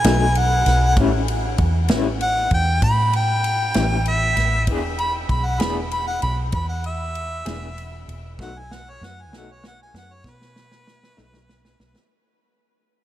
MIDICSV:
0, 0, Header, 1, 5, 480
1, 0, Start_track
1, 0, Tempo, 618557
1, 752, Time_signature, 12, 3, 24, 8
1, 10119, End_track
2, 0, Start_track
2, 0, Title_t, "Harmonica"
2, 0, Program_c, 0, 22
2, 0, Note_on_c, 0, 80, 97
2, 293, Note_on_c, 0, 78, 105
2, 305, Note_off_c, 0, 80, 0
2, 748, Note_off_c, 0, 78, 0
2, 1723, Note_on_c, 0, 78, 108
2, 1949, Note_off_c, 0, 78, 0
2, 1968, Note_on_c, 0, 79, 106
2, 2192, Note_off_c, 0, 79, 0
2, 2200, Note_on_c, 0, 83, 110
2, 2427, Note_off_c, 0, 83, 0
2, 2454, Note_on_c, 0, 79, 105
2, 3139, Note_off_c, 0, 79, 0
2, 3165, Note_on_c, 0, 76, 111
2, 3622, Note_off_c, 0, 76, 0
2, 3875, Note_on_c, 0, 83, 115
2, 3983, Note_off_c, 0, 83, 0
2, 4118, Note_on_c, 0, 83, 105
2, 4232, Note_on_c, 0, 78, 108
2, 4244, Note_off_c, 0, 83, 0
2, 4349, Note_on_c, 0, 83, 106
2, 4361, Note_off_c, 0, 78, 0
2, 4460, Note_off_c, 0, 83, 0
2, 4598, Note_on_c, 0, 83, 106
2, 4704, Note_off_c, 0, 83, 0
2, 4711, Note_on_c, 0, 78, 99
2, 4821, Note_off_c, 0, 78, 0
2, 4831, Note_on_c, 0, 83, 95
2, 4941, Note_off_c, 0, 83, 0
2, 5082, Note_on_c, 0, 83, 105
2, 5186, Note_off_c, 0, 83, 0
2, 5190, Note_on_c, 0, 78, 100
2, 5300, Note_off_c, 0, 78, 0
2, 5325, Note_on_c, 0, 76, 110
2, 6247, Note_off_c, 0, 76, 0
2, 6534, Note_on_c, 0, 78, 110
2, 6662, Note_on_c, 0, 80, 107
2, 6673, Note_off_c, 0, 78, 0
2, 6780, Note_on_c, 0, 78, 107
2, 6792, Note_off_c, 0, 80, 0
2, 6904, Note_on_c, 0, 73, 104
2, 6916, Note_off_c, 0, 78, 0
2, 7025, Note_on_c, 0, 78, 117
2, 7036, Note_off_c, 0, 73, 0
2, 7154, Note_on_c, 0, 80, 100
2, 7165, Note_off_c, 0, 78, 0
2, 7244, Note_off_c, 0, 80, 0
2, 7272, Note_on_c, 0, 78, 89
2, 7387, Note_on_c, 0, 73, 98
2, 7399, Note_off_c, 0, 78, 0
2, 7481, Note_off_c, 0, 73, 0
2, 7508, Note_on_c, 0, 78, 102
2, 7601, Note_off_c, 0, 78, 0
2, 7624, Note_on_c, 0, 80, 95
2, 7719, Note_off_c, 0, 80, 0
2, 7745, Note_on_c, 0, 78, 103
2, 7862, Note_on_c, 0, 73, 107
2, 7873, Note_off_c, 0, 78, 0
2, 7991, Note_on_c, 0, 71, 127
2, 8003, Note_off_c, 0, 73, 0
2, 9383, Note_off_c, 0, 71, 0
2, 10119, End_track
3, 0, Start_track
3, 0, Title_t, "Clean electric guitar"
3, 0, Program_c, 1, 27
3, 37, Note_on_c, 1, 63, 74
3, 40, Note_on_c, 1, 57, 72
3, 49, Note_on_c, 1, 54, 57
3, 53, Note_on_c, 1, 47, 59
3, 179, Note_off_c, 1, 63, 0
3, 180, Note_off_c, 1, 57, 0
3, 185, Note_off_c, 1, 54, 0
3, 187, Note_off_c, 1, 47, 0
3, 755, Note_on_c, 1, 45, 85
3, 761, Note_on_c, 1, 55, 83
3, 771, Note_on_c, 1, 61, 94
3, 774, Note_on_c, 1, 64, 87
3, 897, Note_off_c, 1, 45, 0
3, 900, Note_off_c, 1, 55, 0
3, 905, Note_off_c, 1, 61, 0
3, 907, Note_off_c, 1, 64, 0
3, 1474, Note_on_c, 1, 64, 84
3, 1484, Note_on_c, 1, 61, 79
3, 1486, Note_on_c, 1, 55, 66
3, 1488, Note_on_c, 1, 45, 68
3, 1616, Note_off_c, 1, 64, 0
3, 1621, Note_off_c, 1, 61, 0
3, 1622, Note_off_c, 1, 55, 0
3, 1623, Note_off_c, 1, 45, 0
3, 2910, Note_on_c, 1, 64, 76
3, 2918, Note_on_c, 1, 55, 67
3, 2920, Note_on_c, 1, 61, 61
3, 2928, Note_on_c, 1, 45, 60
3, 3053, Note_off_c, 1, 64, 0
3, 3057, Note_off_c, 1, 55, 0
3, 3058, Note_off_c, 1, 61, 0
3, 3062, Note_off_c, 1, 45, 0
3, 3640, Note_on_c, 1, 52, 84
3, 3648, Note_on_c, 1, 59, 87
3, 3653, Note_on_c, 1, 62, 89
3, 3657, Note_on_c, 1, 68, 86
3, 3777, Note_off_c, 1, 52, 0
3, 3781, Note_off_c, 1, 59, 0
3, 3784, Note_off_c, 1, 62, 0
3, 3786, Note_off_c, 1, 68, 0
3, 4342, Note_on_c, 1, 68, 79
3, 4349, Note_on_c, 1, 62, 73
3, 4350, Note_on_c, 1, 59, 66
3, 4356, Note_on_c, 1, 52, 62
3, 4489, Note_off_c, 1, 68, 0
3, 4492, Note_off_c, 1, 59, 0
3, 4492, Note_off_c, 1, 62, 0
3, 4495, Note_off_c, 1, 52, 0
3, 5784, Note_on_c, 1, 68, 75
3, 5790, Note_on_c, 1, 62, 68
3, 5795, Note_on_c, 1, 59, 64
3, 5803, Note_on_c, 1, 52, 61
3, 5929, Note_off_c, 1, 68, 0
3, 5932, Note_off_c, 1, 62, 0
3, 5935, Note_off_c, 1, 59, 0
3, 5939, Note_off_c, 1, 52, 0
3, 6512, Note_on_c, 1, 47, 86
3, 6516, Note_on_c, 1, 54, 95
3, 6518, Note_on_c, 1, 57, 99
3, 6524, Note_on_c, 1, 63, 97
3, 6653, Note_off_c, 1, 47, 0
3, 6655, Note_off_c, 1, 54, 0
3, 6656, Note_off_c, 1, 57, 0
3, 6659, Note_off_c, 1, 63, 0
3, 7234, Note_on_c, 1, 63, 73
3, 7241, Note_on_c, 1, 57, 74
3, 7247, Note_on_c, 1, 54, 71
3, 7251, Note_on_c, 1, 47, 59
3, 7375, Note_off_c, 1, 63, 0
3, 7379, Note_off_c, 1, 57, 0
3, 7382, Note_off_c, 1, 54, 0
3, 7384, Note_off_c, 1, 47, 0
3, 8667, Note_on_c, 1, 63, 85
3, 8672, Note_on_c, 1, 57, 78
3, 8680, Note_on_c, 1, 54, 72
3, 8687, Note_on_c, 1, 47, 70
3, 8813, Note_off_c, 1, 63, 0
3, 8816, Note_off_c, 1, 57, 0
3, 8819, Note_off_c, 1, 54, 0
3, 8823, Note_off_c, 1, 47, 0
3, 10119, End_track
4, 0, Start_track
4, 0, Title_t, "Fingered electric bass"
4, 0, Program_c, 2, 33
4, 36, Note_on_c, 2, 35, 89
4, 483, Note_off_c, 2, 35, 0
4, 513, Note_on_c, 2, 35, 84
4, 752, Note_off_c, 2, 35, 0
4, 752, Note_on_c, 2, 33, 107
4, 1200, Note_off_c, 2, 33, 0
4, 1230, Note_on_c, 2, 40, 85
4, 1481, Note_off_c, 2, 40, 0
4, 1481, Note_on_c, 2, 33, 93
4, 1924, Note_off_c, 2, 33, 0
4, 1950, Note_on_c, 2, 40, 89
4, 2171, Note_off_c, 2, 40, 0
4, 2191, Note_on_c, 2, 45, 93
4, 2878, Note_off_c, 2, 45, 0
4, 2916, Note_on_c, 2, 33, 100
4, 3360, Note_off_c, 2, 33, 0
4, 3386, Note_on_c, 2, 33, 86
4, 3630, Note_off_c, 2, 33, 0
4, 3630, Note_on_c, 2, 28, 117
4, 4077, Note_off_c, 2, 28, 0
4, 4107, Note_on_c, 2, 35, 94
4, 4348, Note_off_c, 2, 35, 0
4, 4348, Note_on_c, 2, 28, 100
4, 4796, Note_off_c, 2, 28, 0
4, 4834, Note_on_c, 2, 35, 96
4, 5051, Note_off_c, 2, 35, 0
4, 5065, Note_on_c, 2, 40, 95
4, 5755, Note_off_c, 2, 40, 0
4, 5792, Note_on_c, 2, 28, 102
4, 6238, Note_off_c, 2, 28, 0
4, 6272, Note_on_c, 2, 28, 93
4, 6514, Note_off_c, 2, 28, 0
4, 6514, Note_on_c, 2, 35, 113
4, 6960, Note_off_c, 2, 35, 0
4, 6995, Note_on_c, 2, 42, 85
4, 7237, Note_off_c, 2, 42, 0
4, 7237, Note_on_c, 2, 35, 102
4, 7682, Note_off_c, 2, 35, 0
4, 7714, Note_on_c, 2, 42, 100
4, 7932, Note_off_c, 2, 42, 0
4, 7949, Note_on_c, 2, 47, 99
4, 8640, Note_off_c, 2, 47, 0
4, 8677, Note_on_c, 2, 35, 93
4, 9124, Note_off_c, 2, 35, 0
4, 9155, Note_on_c, 2, 35, 99
4, 9264, Note_off_c, 2, 35, 0
4, 10119, End_track
5, 0, Start_track
5, 0, Title_t, "Drums"
5, 34, Note_on_c, 9, 51, 92
5, 43, Note_on_c, 9, 38, 118
5, 111, Note_off_c, 9, 51, 0
5, 121, Note_off_c, 9, 38, 0
5, 273, Note_on_c, 9, 51, 62
5, 351, Note_off_c, 9, 51, 0
5, 512, Note_on_c, 9, 51, 67
5, 522, Note_on_c, 9, 38, 34
5, 590, Note_off_c, 9, 51, 0
5, 599, Note_off_c, 9, 38, 0
5, 750, Note_on_c, 9, 51, 81
5, 752, Note_on_c, 9, 36, 115
5, 827, Note_off_c, 9, 51, 0
5, 829, Note_off_c, 9, 36, 0
5, 994, Note_on_c, 9, 51, 64
5, 1072, Note_off_c, 9, 51, 0
5, 1227, Note_on_c, 9, 51, 61
5, 1231, Note_on_c, 9, 36, 81
5, 1305, Note_off_c, 9, 51, 0
5, 1308, Note_off_c, 9, 36, 0
5, 1462, Note_on_c, 9, 51, 76
5, 1472, Note_on_c, 9, 38, 110
5, 1540, Note_off_c, 9, 51, 0
5, 1549, Note_off_c, 9, 38, 0
5, 1712, Note_on_c, 9, 51, 62
5, 1789, Note_off_c, 9, 51, 0
5, 1946, Note_on_c, 9, 51, 62
5, 1950, Note_on_c, 9, 36, 81
5, 2024, Note_off_c, 9, 51, 0
5, 2027, Note_off_c, 9, 36, 0
5, 2188, Note_on_c, 9, 51, 88
5, 2190, Note_on_c, 9, 36, 112
5, 2266, Note_off_c, 9, 51, 0
5, 2268, Note_off_c, 9, 36, 0
5, 2431, Note_on_c, 9, 51, 61
5, 2508, Note_off_c, 9, 51, 0
5, 2670, Note_on_c, 9, 51, 70
5, 2747, Note_off_c, 9, 51, 0
5, 2904, Note_on_c, 9, 51, 91
5, 2913, Note_on_c, 9, 38, 119
5, 2981, Note_off_c, 9, 51, 0
5, 2991, Note_off_c, 9, 38, 0
5, 3146, Note_on_c, 9, 51, 68
5, 3224, Note_off_c, 9, 51, 0
5, 3389, Note_on_c, 9, 51, 71
5, 3398, Note_on_c, 9, 38, 36
5, 3466, Note_off_c, 9, 51, 0
5, 3476, Note_off_c, 9, 38, 0
5, 3624, Note_on_c, 9, 51, 92
5, 3627, Note_on_c, 9, 36, 114
5, 3702, Note_off_c, 9, 51, 0
5, 3705, Note_off_c, 9, 36, 0
5, 3868, Note_on_c, 9, 51, 66
5, 3946, Note_off_c, 9, 51, 0
5, 4107, Note_on_c, 9, 36, 85
5, 4107, Note_on_c, 9, 51, 61
5, 4185, Note_off_c, 9, 36, 0
5, 4185, Note_off_c, 9, 51, 0
5, 4343, Note_on_c, 9, 51, 82
5, 4353, Note_on_c, 9, 38, 108
5, 4421, Note_off_c, 9, 51, 0
5, 4430, Note_off_c, 9, 38, 0
5, 4589, Note_on_c, 9, 51, 63
5, 4667, Note_off_c, 9, 51, 0
5, 4826, Note_on_c, 9, 51, 62
5, 4904, Note_off_c, 9, 51, 0
5, 5061, Note_on_c, 9, 51, 85
5, 5066, Note_on_c, 9, 36, 113
5, 5139, Note_off_c, 9, 51, 0
5, 5144, Note_off_c, 9, 36, 0
5, 5308, Note_on_c, 9, 51, 54
5, 5385, Note_off_c, 9, 51, 0
5, 5549, Note_on_c, 9, 51, 66
5, 5627, Note_off_c, 9, 51, 0
5, 5788, Note_on_c, 9, 51, 91
5, 5797, Note_on_c, 9, 38, 126
5, 5866, Note_off_c, 9, 51, 0
5, 5875, Note_off_c, 9, 38, 0
5, 6036, Note_on_c, 9, 51, 68
5, 6113, Note_off_c, 9, 51, 0
5, 6276, Note_on_c, 9, 51, 65
5, 6354, Note_off_c, 9, 51, 0
5, 6510, Note_on_c, 9, 36, 114
5, 6521, Note_on_c, 9, 38, 66
5, 6588, Note_off_c, 9, 36, 0
5, 6598, Note_off_c, 9, 38, 0
5, 6762, Note_on_c, 9, 38, 75
5, 6840, Note_off_c, 9, 38, 0
5, 7007, Note_on_c, 9, 38, 76
5, 7085, Note_off_c, 9, 38, 0
5, 7241, Note_on_c, 9, 38, 82
5, 7319, Note_off_c, 9, 38, 0
5, 7478, Note_on_c, 9, 38, 86
5, 7556, Note_off_c, 9, 38, 0
5, 7719, Note_on_c, 9, 38, 80
5, 7797, Note_off_c, 9, 38, 0
5, 7949, Note_on_c, 9, 36, 120
5, 7960, Note_on_c, 9, 38, 85
5, 8027, Note_off_c, 9, 36, 0
5, 8037, Note_off_c, 9, 38, 0
5, 8083, Note_on_c, 9, 38, 76
5, 8161, Note_off_c, 9, 38, 0
5, 8196, Note_on_c, 9, 38, 89
5, 8274, Note_off_c, 9, 38, 0
5, 8316, Note_on_c, 9, 38, 82
5, 8393, Note_off_c, 9, 38, 0
5, 8438, Note_on_c, 9, 38, 103
5, 8516, Note_off_c, 9, 38, 0
5, 8563, Note_on_c, 9, 38, 92
5, 8641, Note_off_c, 9, 38, 0
5, 8677, Note_on_c, 9, 38, 111
5, 8754, Note_off_c, 9, 38, 0
5, 8798, Note_on_c, 9, 38, 93
5, 8875, Note_off_c, 9, 38, 0
5, 8919, Note_on_c, 9, 38, 108
5, 8997, Note_off_c, 9, 38, 0
5, 9040, Note_on_c, 9, 38, 97
5, 9117, Note_off_c, 9, 38, 0
5, 9157, Note_on_c, 9, 38, 113
5, 9234, Note_off_c, 9, 38, 0
5, 9277, Note_on_c, 9, 38, 100
5, 9355, Note_off_c, 9, 38, 0
5, 10119, End_track
0, 0, End_of_file